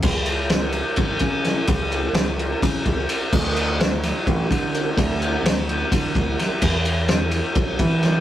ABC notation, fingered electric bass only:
X:1
M:7/8
L:1/8
Q:1/4=128
K:C#phr
V:1 name="Fingered electric bass" clef=bass
C,,4 G,,, C,2 | C,,2 C,,2 C, C,, z | D,,4 A,,, D,2 | D,,2 D,,2 D, D,, z |
E,,4 B,,, E,2 |]